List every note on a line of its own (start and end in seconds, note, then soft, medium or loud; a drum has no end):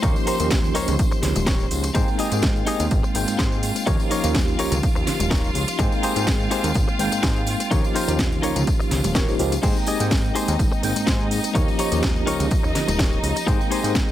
0.00 0.13 D#2 loud
0.00 0.37 F3 medium
0.00 0.37 A#3 medium
0.00 0.37 C#4 medium
0.00 0.16 D#4 loud
0.00 0.37 D#4 medium
0.00 0.16 G4 medium
0.00 0.37 G4 loud
0.00 0.16 A#4 loud
0.00 1.96 C5 medium
0.00 0.16 C#5 loud
0.00 1.96 C6 medium
0.00 kick loud
0.00 closed hi-hat soft
0.00 tambourine medium
0.16 tambourine soft
0.27 0.51 D#4 medium
0.27 0.51 G4 medium
0.27 0.51 A#4 medium
0.27 0.51 C5 medium
0.27 open hi-hat loud
0.27 tambourine medium
0.39 0.71 D#2 medium
0.39 1.92 F3 medium
0.39 1.92 A#3 medium
0.39 1.93 C#4 medium
0.39 1.93 D#4 medium
0.39 1.93 G4 medium
0.39 closed hi-hat medium
0.39 tambourine medium
0.39 tambourine soft
0.50 kick loud
0.50 snare loud
0.50 closed hi-hat medium
0.50 tambourine medium
0.50 high conga medium
0.64 tambourine soft
0.74 0.85 C#2 soft
0.74 0.93 D#4 medium
0.74 0.93 G4 medium
0.74 0.94 A#4 medium
0.74 0.94 C#5 medium
0.74 open hi-hat loud
0.74 tambourine medium
0.88 0.97 C#2 loud
0.88 closed hi-hat medium
0.88 tambourine soft
0.88 tambourine medium
0.88 low conga medium
0.99 kick loud
0.99 closed hi-hat soft
0.99 tambourine medium
1.11 muted clean electric guitar stroke loud
1.11 tambourine soft
1.22 1.33 C#2 loud
1.22 muted clean electric guitar stroke soft
1.22 snare medium
1.22 open hi-hat loud
1.22 tambourine loud
1.22 low conga medium
1.35 1.67 D#1 loud
1.35 muted clean electric guitar stroke soft
1.35 closed hi-hat medium
1.35 tambourine medium
1.35 tambourine soft
1.35 high conga medium
1.46 1.65 D#4 medium
1.46 1.65 G4 medium
1.46 1.65 A#4 medium
1.46 1.66 C#5 medium
1.46 kick loud
1.46 snare loud
1.46 closed hi-hat soft
1.46 tambourine medium
1.46 high conga medium
1.49 tambourine soft
1.60 tambourine soft
1.71 1.90 C#2 medium
1.71 open hi-hat loud
1.71 tambourine medium
1.83 muted clean electric guitar stroke soft
1.83 closed hi-hat medium
1.83 tambourine medium
1.83 tambourine soft
1.94 2.05 G#2 loud
1.94 2.29 G#3 medium
1.94 2.29 A#3 medium
1.94 2.29 C4 medium
1.94 2.08 D#4 loud
1.94 2.29 D#4 medium
1.94 9.64 F4 medium
1.94 2.08 G4 medium
1.94 2.08 G#4 medium
1.94 2.08 C5 loud
1.94 9.64 F5 medium
1.94 2.29 G5 loud
1.94 kick loud
1.94 closed hi-hat medium
1.94 tambourine medium
1.94 tambourine soft
2.08 tambourine soft
2.18 2.43 D#4 medium
2.18 2.43 G4 medium
2.18 2.43 G#4 medium
2.18 2.43 D#5 medium
2.18 open hi-hat loud
2.18 tambourine loud
2.32 2.63 G#2 medium
2.32 3.12 G#3 medium
2.32 3.12 A#3 medium
2.32 3.13 C4 medium
2.32 3.13 D#4 medium
2.32 3.13 G5 medium
2.32 closed hi-hat medium
2.32 tambourine medium
2.32 tambourine soft
2.42 kick loud
2.42 snare loud
2.42 closed hi-hat soft
2.42 tambourine soft
2.42 tambourine medium
2.42 high conga medium
2.56 tambourine soft
2.66 2.85 D#4 medium
2.66 2.85 G4 medium
2.66 2.86 G#4 medium
2.66 2.86 D#5 medium
2.66 open hi-hat loud
2.66 tambourine medium
2.80 2.89 D#2 loud
2.80 closed hi-hat medium
2.80 tambourine soft
2.80 tambourine medium
2.91 3.01 G#1 medium
2.91 kick loud
2.91 closed hi-hat soft
2.91 tambourine medium
2.91 tambourine soft
3.03 muted clean electric guitar stroke loud
3.03 tambourine soft
3.14 3.25 G#1 medium
3.14 3.84 G#3 medium
3.14 3.84 A#3 medium
3.14 3.84 C4 medium
3.14 3.85 D#4 medium
3.14 3.85 G5 medium
3.14 muted clean electric guitar stroke soft
3.14 open hi-hat loud
3.14 tambourine loud
3.27 3.37 G#2 soft
3.27 muted clean electric guitar stroke soft
3.27 closed hi-hat medium
3.27 tambourine medium
3.27 tambourine soft
3.38 3.72 G#2 medium
3.38 3.57 D#4 medium
3.38 3.57 G4 medium
3.38 3.58 G#4 medium
3.38 3.58 C5 medium
3.38 kick loud
3.38 snare loud
3.38 closed hi-hat medium
3.38 tambourine medium
3.52 tambourine soft
3.63 open hi-hat loud
3.63 tambourine medium
3.75 muted clean electric guitar stroke soft
3.75 closed hi-hat medium
3.75 tambourine medium
3.75 tambourine soft
3.86 3.97 D#2 loud
3.86 4.21 F3 loud
3.86 4.21 A#3 medium
3.86 4.21 C#4 medium
3.86 4.00 D#4 loud
3.86 4.21 D#4 medium
3.86 4.00 G4 medium
3.86 4.21 G4 loud
3.86 4.00 A#4 loud
3.86 4.00 C#5 loud
3.86 kick loud
3.86 closed hi-hat medium
3.86 tambourine medium
4.00 tambourine soft
4.10 4.35 D#4 medium
4.10 4.35 G4 medium
4.10 4.35 A#4 medium
4.10 4.35 C#5 medium
4.10 open hi-hat loud
4.10 tambourine medium
4.23 4.55 D#2 medium
4.23 5.76 F3 medium
4.23 5.76 A#3 medium
4.23 5.77 C#4 medium
4.23 5.77 D#4 medium
4.23 5.77 G4 medium
4.23 closed hi-hat medium
4.23 tambourine soft
4.23 tambourine medium
4.35 kick loud
4.35 snare loud
4.35 closed hi-hat medium
4.35 tambourine medium
4.35 high conga medium
4.48 tambourine soft
4.59 4.69 C#2 soft
4.59 4.77 D#4 medium
4.59 4.77 G4 medium
4.59 4.78 A#4 medium
4.59 4.78 C#5 medium
4.59 open hi-hat loud
4.59 tambourine medium
4.72 4.81 C#2 loud
4.72 closed hi-hat medium
4.72 tambourine medium
4.72 tambourine soft
4.72 low conga medium
4.83 kick loud
4.83 closed hi-hat soft
4.83 tambourine medium
4.95 5.05 D#2 medium
4.95 muted clean electric guitar stroke loud
4.95 tambourine soft
5.07 muted clean electric guitar stroke soft
5.07 snare medium
5.07 open hi-hat loud
5.07 tambourine loud
5.07 low conga medium
5.20 5.51 D#1 medium
5.20 muted clean electric guitar stroke soft
5.20 closed hi-hat medium
5.20 tambourine soft
5.20 tambourine medium
5.20 high conga medium
5.30 5.49 D#4 loud
5.30 5.49 G4 medium
5.30 5.50 A#4 medium
5.30 5.50 C#5 medium
5.30 kick loud
5.30 snare loud
5.30 closed hi-hat medium
5.30 tambourine soft
5.30 tambourine medium
5.30 high conga medium
5.44 tambourine soft
5.55 5.65 C#2 loud
5.55 open hi-hat loud
5.55 tambourine medium
5.68 muted clean electric guitar stroke soft
5.68 closed hi-hat medium
5.68 tambourine soft
5.68 tambourine medium
5.78 5.89 G#2 loud
5.78 6.13 G#3 loud
5.78 6.13 A#3 medium
5.78 6.13 C4 medium
5.78 5.92 D#4 loud
5.78 6.13 D#4 medium
5.78 5.92 G4 medium
5.78 5.92 G#4 loud
5.78 5.92 C5 loud
5.78 6.13 G5 loud
5.78 kick loud
5.78 closed hi-hat medium
5.78 tambourine medium
5.92 tambourine soft
6.03 6.27 D#4 medium
6.03 6.27 G4 medium
6.03 6.27 G#4 medium
6.03 6.27 C5 medium
6.03 open hi-hat loud
6.03 tambourine loud
6.15 6.47 G#2 medium
6.15 6.96 G#3 medium
6.15 6.96 A#3 medium
6.15 6.96 C4 medium
6.15 6.97 D#4 medium
6.15 6.97 G5 medium
6.15 closed hi-hat medium
6.15 tambourine soft
6.15 tambourine medium
6.27 kick loud
6.27 snare loud
6.27 closed hi-hat medium
6.27 tambourine medium
6.27 high conga medium
6.40 tambourine soft
6.51 6.69 D#4 medium
6.51 6.69 G4 medium
6.51 6.70 G#4 medium
6.51 6.70 C5 medium
6.51 open hi-hat loud
6.51 tambourine loud
6.63 6.73 D#2 loud
6.63 closed hi-hat medium
6.63 tambourine soft
6.63 tambourine medium
6.74 6.85 G#1 loud
6.74 kick loud
6.74 closed hi-hat medium
6.74 tambourine medium
6.88 muted clean electric guitar stroke loud
6.88 tambourine soft
6.99 7.09 G#1 medium
6.99 7.68 G#3 medium
6.99 7.68 A#3 medium
6.99 7.69 C4 medium
6.99 7.69 D#4 medium
6.99 7.69 G5 medium
6.99 muted clean electric guitar stroke soft
6.99 open hi-hat loud
6.99 tambourine loud
7.12 7.21 G#2 soft
7.12 muted clean electric guitar stroke soft
7.12 closed hi-hat medium
7.12 tambourine soft
7.12 tambourine medium
7.23 7.56 G#2 medium
7.23 7.41 D#4 medium
7.23 7.41 G4 medium
7.23 7.42 G#4 medium
7.23 7.42 C5 medium
7.23 kick loud
7.23 snare loud
7.23 closed hi-hat medium
7.23 tambourine medium
7.36 tambourine soft
7.47 open hi-hat loud
7.47 tambourine medium
7.60 muted clean electric guitar stroke soft
7.60 closed hi-hat medium
7.60 tambourine soft
7.60 tambourine medium
7.71 7.81 D#2 loud
7.71 8.05 F3 medium
7.71 8.05 A#3 medium
7.71 8.05 C#4 medium
7.71 7.84 D#4 loud
7.71 8.05 D#4 medium
7.71 7.84 G4 medium
7.71 8.05 G4 loud
7.71 7.84 A#4 medium
7.71 7.84 C#5 loud
7.71 kick loud
7.71 closed hi-hat medium
7.71 tambourine medium
7.84 tambourine soft
7.95 8.19 D#4 medium
7.95 8.19 G4 medium
7.95 8.19 A#4 medium
7.95 8.19 C5 medium
7.95 open hi-hat loud
7.95 tambourine loud
8.07 8.39 D#2 medium
8.07 9.13 F3 medium
8.07 9.13 A#3 medium
8.07 9.13 C#4 medium
8.07 9.13 D#4 medium
8.07 9.13 G4 medium
8.07 closed hi-hat medium
8.07 tambourine soft
8.07 tambourine medium
8.19 kick loud
8.19 snare loud
8.19 closed hi-hat medium
8.19 tambourine soft
8.19 tambourine medium
8.19 high conga medium
8.32 tambourine soft
8.32 low conga medium
8.42 8.53 C#2 soft
8.42 8.61 D#4 medium
8.42 8.61 G4 medium
8.42 8.62 A#4 medium
8.42 8.62 C#5 medium
8.42 open hi-hat loud
8.42 tambourine loud
8.56 8.65 C#2 loud
8.56 closed hi-hat medium
8.56 tambourine soft
8.56 tambourine medium
8.56 low conga medium
8.67 kick loud
8.67 closed hi-hat medium
8.67 tambourine medium
8.79 muted clean electric guitar stroke loud
8.79 tambourine soft
8.91 9.01 C#2 loud
8.91 muted clean electric guitar stroke soft
8.91 snare medium
8.91 open hi-hat loud
8.91 tambourine loud
8.91 low conga medium
9.04 9.35 D#1 loud
9.04 muted clean electric guitar stroke soft
9.04 closed hi-hat medium
9.04 tambourine soft
9.04 tambourine medium
9.04 high conga medium
9.15 9.25 F3 loud
9.15 9.25 A#3 medium
9.15 9.25 C#4 medium
9.15 9.33 D#4 medium
9.15 9.25 D#4 medium
9.15 9.34 G4 medium
9.15 9.34 A#4 medium
9.15 9.25 A#4 loud
9.15 9.34 C#5 medium
9.15 kick loud
9.15 snare loud
9.15 closed hi-hat medium
9.15 tambourine medium
9.15 high conga medium
9.28 9.36 F3 medium
9.28 9.36 A#3 medium
9.28 9.37 C#4 medium
9.28 9.37 D#4 medium
9.28 9.37 G4 medium
9.28 tambourine soft
9.39 9.58 C#2 medium
9.39 9.53 F3 medium
9.39 9.53 A#3 medium
9.39 9.53 C#4 medium
9.39 9.53 D#4 medium
9.39 9.54 G4 loud
9.39 open hi-hat loud
9.39 tambourine medium
9.52 muted clean electric guitar stroke soft
9.52 closed hi-hat medium
9.52 tambourine soft
9.52 tambourine medium
9.63 9.73 G#2 loud
9.63 9.97 G#3 loud
9.63 9.97 A#3 medium
9.63 9.97 C4 medium
9.63 9.76 D#4 loud
9.63 14.12 D#4 medium
9.63 9.97 D#4 medium
9.63 9.76 G4 medium
9.63 9.76 G#4 loud
9.63 9.76 C5 loud
9.63 14.12 D#5 medium
9.63 9.97 G5 loud
9.63 kick loud
9.63 closed hi-hat medium
9.63 crash medium
9.63 tambourine medium
9.76 tambourine soft
9.87 10.11 D#4 medium
9.87 10.11 G4 medium
9.87 10.11 G#4 medium
9.87 10.11 D#5 medium
9.87 open hi-hat loud
9.87 tambourine loud
9.99 10.31 G#2 medium
9.99 10.80 G#3 medium
9.99 10.80 A#3 medium
9.99 10.81 C4 medium
9.99 10.81 D#4 medium
9.99 10.81 G5 medium
9.99 closed hi-hat medium
9.99 tambourine soft
9.99 tambourine medium
10.11 kick loud
10.11 snare loud
10.11 closed hi-hat medium
10.11 tambourine medium
10.11 high conga medium
10.25 tambourine soft
10.35 10.53 D#4 medium
10.35 10.54 G4 medium
10.35 10.54 G#4 medium
10.35 10.54 C5 medium
10.35 open hi-hat loud
10.35 tambourine loud
10.47 10.57 D#2 loud
10.47 closed hi-hat medium
10.47 tambourine soft
10.47 tambourine medium
10.59 10.69 G#1 loud
10.59 kick loud
10.59 closed hi-hat medium
10.59 tambourine medium
10.72 muted clean electric guitar stroke loud
10.72 tambourine soft
10.83 10.93 G#1 medium
10.83 11.52 G#3 medium
10.83 11.53 A#3 medium
10.83 11.53 C4 medium
10.83 11.53 D#4 medium
10.83 11.53 G5 medium
10.83 muted clean electric guitar stroke soft
10.83 open hi-hat loud
10.83 tambourine loud
10.96 11.05 G#2 soft
10.96 muted clean electric guitar stroke soft
10.96 closed hi-hat medium
10.96 tambourine medium
10.96 tambourine soft
11.06 11.40 G#2 medium
11.06 11.25 D#4 medium
11.06 11.25 G4 medium
11.06 11.26 G#4 medium
11.06 11.26 C5 medium
11.06 kick loud
11.06 snare loud
11.06 closed hi-hat medium
11.06 tambourine soft
11.06 tambourine medium
11.20 tambourine soft
11.31 open hi-hat loud
11.31 tambourine medium
11.44 muted clean electric guitar stroke soft
11.44 closed hi-hat medium
11.44 tambourine medium
11.44 tambourine soft
11.55 11.65 D#2 loud
11.55 11.89 F3 medium
11.55 11.89 A#3 medium
11.55 11.89 C#4 medium
11.55 11.68 D#4 loud
11.55 11.89 D#4 medium
11.55 11.68 G4 medium
11.55 11.89 G4 loud
11.55 11.68 A#4 loud
11.55 11.68 C#5 loud
11.55 kick loud
11.55 closed hi-hat medium
11.55 tambourine medium
11.68 tambourine soft
11.79 12.03 D#4 medium
11.79 12.03 G4 medium
11.79 12.03 A#4 medium
11.79 12.03 C#5 medium
11.79 open hi-hat loud
11.79 tambourine loud
11.91 12.23 D#2 medium
11.91 13.44 F3 medium
11.91 13.44 A#3 medium
11.91 13.45 C#4 medium
11.91 13.45 D#4 medium
11.91 13.45 G4 medium
11.91 closed hi-hat medium
11.91 tambourine soft
11.91 tambourine medium
12.03 kick loud
12.03 snare loud
12.03 closed hi-hat medium
12.03 tambourine medium
12.03 high conga medium
12.16 tambourine soft
12.26 12.37 C#2 soft
12.26 12.45 D#4 medium
12.26 12.45 G4 medium
12.26 12.46 A#4 medium
12.26 12.46 C#5 medium
12.26 open hi-hat loud
12.26 tambourine medium
12.40 12.49 C#2 loud
12.40 closed hi-hat medium
12.40 tambourine soft
12.40 tambourine medium
12.40 low conga medium
12.51 kick loud
12.51 closed hi-hat medium
12.51 tambourine medium
12.63 12.73 D#2 medium
12.63 muted clean electric guitar stroke loud
12.63 tambourine soft
12.75 muted clean electric guitar stroke soft
12.75 snare medium
12.75 open hi-hat loud
12.75 tambourine loud
12.75 low conga medium
12.88 13.19 D#1 medium
12.88 muted clean electric guitar stroke soft
12.88 closed hi-hat medium
12.88 tambourine soft
12.88 tambourine medium
12.88 high conga loud
12.99 13.17 D#4 medium
12.99 13.17 G4 medium
12.99 13.18 A#4 medium
12.99 13.18 C#5 medium
12.99 kick loud
12.99 snare loud
12.99 closed hi-hat medium
12.99 tambourine medium
12.99 high conga medium
13.13 tambourine soft
13.23 13.33 C#2 loud
13.23 open hi-hat loud
13.23 tambourine medium
13.36 muted clean electric guitar stroke soft
13.36 closed hi-hat medium
13.36 tambourine soft
13.36 tambourine medium
13.46 13.57 G#2 loud
13.46 13.81 G#3 loud
13.46 13.81 A#3 medium
13.46 13.81 C4 medium
13.46 13.60 D#4 loud
13.46 13.81 D#4 medium
13.46 13.60 G4 medium
13.46 13.60 G#4 medium
13.46 13.60 C5 loud
13.46 13.81 G5 loud
13.46 kick loud
13.46 closed hi-hat medium
13.46 tambourine medium
13.61 tambourine soft
13.70 13.95 D#4 medium
13.70 13.95 G4 medium
13.70 13.95 G#4 medium
13.70 13.95 C5 medium
13.70 open hi-hat loud
13.70 tambourine medium
13.83 14.12 G#2 medium
13.83 14.12 G#3 medium
13.83 14.12 A#3 medium
13.83 14.12 C4 medium
13.83 14.12 D#4 medium
13.83 14.12 G5 medium
13.83 closed hi-hat medium
13.83 tambourine medium
13.83 tambourine soft
13.95 kick loud
13.95 snare loud
13.95 closed hi-hat medium
13.95 tambourine medium
13.95 tambourine soft
13.95 high conga loud
14.09 tambourine soft